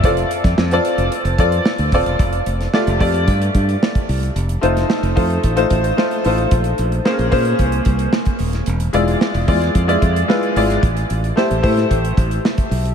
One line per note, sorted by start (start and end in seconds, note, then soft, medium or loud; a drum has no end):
0.04 0.24 F1 loud
0.04 0.52 C4 medium
0.04 0.52 F4 medium
0.04 0.52 A4 medium
0.04 0.52 D5 medium
0.04 kick loud
0.04 closed hi-hat medium
0.17 closed hi-hat medium
0.31 closed hi-hat medium
0.44 0.54 F2 medium
0.44 kick medium
0.44 snare soft
0.44 closed hi-hat soft
0.58 0.78 F2 medium
0.58 snare loud
0.71 1.19 C4 medium
0.71 1.20 F4 medium
0.71 1.20 A4 medium
0.71 1.20 D5 loud
0.71 closed hi-hat soft
0.85 closed hi-hat medium
0.98 1.08 F1 medium
0.98 closed hi-hat soft
1.12 closed hi-hat medium
1.25 1.35 F1 loud
1.25 closed hi-hat medium
1.38 1.58 F2 medium
1.38 1.77 C4 medium
1.38 1.77 F4 medium
1.38 1.77 A4 medium
1.38 1.77 D5 medium
1.38 kick medium
1.38 closed hi-hat medium
1.52 closed hi-hat soft
1.65 snare loud
1.78 1.89 D2 medium
1.78 closed hi-hat soft
1.92 2.02 D#1 medium
1.92 2.20 C4 medium
1.92 2.20 F4 medium
1.92 2.20 A4 medium
1.92 2.20 D5 medium
1.92 kick medium
1.92 open hi-hat medium
2.06 2.16 E1 medium
2.06 closed hi-hat medium
2.19 2.39 F1 loud
2.19 kick loud
2.19 closed hi-hat medium
2.33 closed hi-hat medium
2.46 2.66 F1 medium
2.46 closed hi-hat medium
2.61 snare soft
2.61 closed hi-hat soft
2.74 2.93 A3 medium
2.74 2.93 F4 medium
2.74 2.93 G4 medium
2.74 2.93 D5 medium
2.74 snare medium
2.87 2.97 F1 loud
2.87 closed hi-hat soft
2.99 3.28 F2 medium
2.99 3.77 A3 medium
2.99 3.77 F4 medium
2.99 3.77 G4 medium
2.99 3.78 D5 loud
2.99 kick medium
2.99 open hi-hat medium
3.14 closed hi-hat soft
3.28 3.48 G2 medium
3.28 kick medium
3.28 closed hi-hat medium
3.42 closed hi-hat medium
3.55 3.75 G2 medium
3.55 kick medium
3.55 closed hi-hat medium
3.69 closed hi-hat soft
3.83 snare loud
3.95 kick medium
3.95 closed hi-hat soft
4.09 4.29 C2 medium
4.09 open hi-hat medium
4.23 closed hi-hat medium
4.36 4.56 F1 medium
4.36 closed hi-hat medium
4.49 closed hi-hat medium
4.61 4.83 F1 loud
4.61 5.00 A3 medium
4.61 5.00 D#4 medium
4.61 5.01 F4 medium
4.61 5.01 C5 medium
4.61 closed hi-hat medium
4.77 snare soft
4.77 closed hi-hat soft
4.90 snare loud
5.03 5.13 F1 medium
5.03 closed hi-hat soft
5.15 5.37 F2 medium
5.15 5.45 A3 medium
5.15 5.45 D#4 medium
5.15 5.45 F4 medium
5.15 5.45 C5 medium
5.15 kick medium
5.15 open hi-hat medium
5.30 closed hi-hat soft
5.43 5.64 A1 medium
5.43 kick medium
5.43 closed hi-hat medium
5.56 5.85 A3 medium
5.56 5.85 D#4 medium
5.56 5.85 F4 medium
5.56 5.86 C5 medium
5.56 closed hi-hat medium
5.70 5.91 A1 medium
5.70 kick medium
5.70 closed hi-hat medium
5.84 closed hi-hat medium
5.97 6.16 A3 medium
5.97 6.16 D#4 medium
5.97 6.17 F4 medium
5.97 6.17 C5 medium
5.97 snare loud
6.11 closed hi-hat soft
6.24 6.45 A1 medium
6.24 6.51 A3 medium
6.24 6.51 D#4 medium
6.24 6.52 F4 medium
6.24 6.52 C5 medium
6.24 open hi-hat medium
6.38 closed hi-hat medium
6.51 6.72 A#1 loud
6.51 kick loud
6.51 closed hi-hat medium
6.64 closed hi-hat medium
6.78 6.99 A#1 loud
6.78 closed hi-hat medium
6.92 closed hi-hat soft
7.05 7.24 A#3 medium
7.05 7.24 C#4 medium
7.05 7.25 G#4 medium
7.05 7.25 C5 medium
7.05 snare loud
7.19 7.29 A#1 medium
7.19 closed hi-hat soft
7.31 7.52 A#2 medium
7.31 8.09 A#3 medium
7.31 8.09 C#4 medium
7.31 8.09 G#4 medium
7.31 8.09 C5 medium
7.31 kick medium
7.31 open hi-hat medium
7.45 closed hi-hat soft
7.59 7.79 C2 medium
7.59 kick medium
7.59 closed hi-hat medium
7.72 closed hi-hat medium
7.85 8.06 C2 medium
7.85 kick medium
7.85 closed hi-hat medium
7.99 closed hi-hat medium
8.13 snare loud
8.25 kick medium
8.25 closed hi-hat soft
8.39 8.60 D#1 medium
8.39 open hi-hat medium
8.53 snare soft
8.53 closed hi-hat medium
8.66 8.87 E1 loud
8.66 closed hi-hat medium
8.80 closed hi-hat medium
8.93 9.14 E1 loud
8.93 9.32 G#3 medium
8.93 9.32 E4 medium
8.93 9.32 F4 medium
8.93 9.33 D5 medium
8.93 closed hi-hat medium
9.08 closed hi-hat soft
9.21 snare loud
9.34 9.45 E1 medium
9.34 closed hi-hat soft
9.48 9.68 E2 medium
9.48 9.77 G#3 medium
9.48 9.77 E4 medium
9.48 9.77 F4 medium
9.48 9.77 D5 medium
9.48 kick medium
9.48 open hi-hat medium
9.62 snare soft
9.62 closed hi-hat medium
9.75 9.95 F2 medium
9.75 kick medium
9.75 closed hi-hat medium
9.88 10.17 G#3 medium
9.88 10.17 E4 medium
9.88 10.17 F4 medium
9.88 10.17 D5 medium
9.88 closed hi-hat medium
10.02 10.22 F2 medium
10.02 kick medium
10.02 closed hi-hat medium
10.16 closed hi-hat medium
10.28 10.48 G#3 medium
10.28 10.48 E4 medium
10.28 10.48 F4 medium
10.28 10.48 B4 medium
10.28 snare loud
10.43 closed hi-hat soft
10.56 10.76 G#1 medium
10.56 10.83 G#3 medium
10.56 10.83 E4 medium
10.56 10.83 F4 medium
10.56 10.84 D5 medium
10.56 open hi-hat medium
10.70 snare soft
10.70 closed hi-hat medium
10.83 11.03 A1 medium
10.83 kick loud
10.83 closed hi-hat medium
10.97 closed hi-hat medium
11.10 11.30 A1 medium
11.10 closed hi-hat medium
11.24 closed hi-hat soft
11.36 11.56 A3 medium
11.36 11.56 E4 medium
11.36 11.56 G4 medium
11.36 11.56 C5 medium
11.36 snare loud
11.51 11.61 A1 medium
11.51 closed hi-hat soft
11.62 11.84 A2 medium
11.62 12.40 A3 medium
11.62 12.40 E4 medium
11.62 12.40 G4 medium
11.62 12.41 C5 medium
11.62 kick medium
11.62 open hi-hat medium
11.77 snare soft
11.77 closed hi-hat soft
11.91 12.11 A1 medium
11.91 kick medium
11.91 closed hi-hat medium
12.05 closed hi-hat medium
12.17 12.38 A1 medium
12.17 kick medium
12.17 closed hi-hat medium
12.31 closed hi-hat medium
12.45 snare loud
12.58 kick medium
12.58 closed hi-hat soft
12.71 12.95 B1 medium
12.71 open hi-hat medium
12.85 closed hi-hat medium